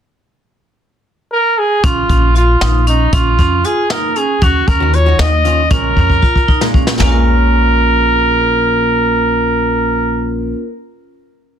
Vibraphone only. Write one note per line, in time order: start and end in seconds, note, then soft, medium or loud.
1.84 1.97 C#4 medium
2.09 2.23 C#4 medium
2.35 2.49 F4 medium
2.61 2.75 D#4 medium
2.87 3.00 C#4 medium
3.13 3.27 C#4 medium
3.39 3.52 C#4 medium
3.65 3.78 F4 medium
3.91 4.04 D#4 medium
4.17 4.30 C#4 medium
4.42 4.56 C#4 medium
4.68 4.81 C#4 medium
4.94 5.07 F4 medium
5.19 5.33 D#4 medium
5.45 5.59 C#4 medium
5.71 5.84 C#4 medium
5.97 6.10 C#4 medium
6.22 6.36 F4 medium
6.48 6.62 D#4 medium
6.74 6.88 C#4 medium
7.00 10.53 A#3 medium
7.04 10.57 C#4 medium
7.04 10.61 F4 medium
7.12 10.65 A#4 medium